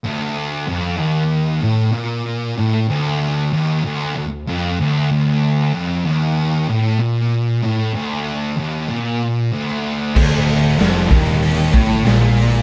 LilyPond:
<<
  \new Staff \with { instrumentName = "Distorted electric guitar" } { \clef bass \time 4/4 \key d \phrygian \tempo 4 = 95 r1 | r1 | r1 | r1 |
d,4 f,8 ees,4 a,8 bes,4 | }
  \new Staff \with { instrumentName = "Distorted electric guitar" } { \clef bass \time 4/4 \key d \phrygian d,4 f,8 ees,4 a,8 bes,4 | a,8 d,4 ees,8 d,8 d,8 f,8 d,8 | d,4 f,8 ees,4 a,8 bes,4 | a,8 d,4 ees,8 bes,4 d,4 |
d,4 f,8 ees,4 a,8 bes,4 | }
  \new Staff \with { instrumentName = "Distorted electric guitar" } { \clef bass \time 4/4 \key d \phrygian d,4 f,8 ees,4 a,8 bes,4 | a,8 d,4 ees,8 d,8 d,8 f,8 d,8 | d,4 f,8 ees,4 a,8 bes,4 | a,8 d,4 ees,8 bes,4 d,4 |
d,4 f,8 ees,4 a,8 bes,4 | }
  \new Staff \with { instrumentName = "Fingered electric bass" } { \clef bass \time 4/4 \key d \phrygian r1 | r1 | r1 | r1 |
d,,4 f,,8 ees,,4 a,,8 bes,,4 | }
  \new DrumStaff \with { instrumentName = "Drums" } \drummode { \time 4/4 r4 r4 r4 r4 | r4 r4 r4 r4 | r4 r4 r4 r4 | r4 r4 r4 r4 |
<cymc bd>8 hho8 <hho sn>16 sn16 <hho bd>8 hho8 <hho bd>8 <hho sn>8 hho8 | }
>>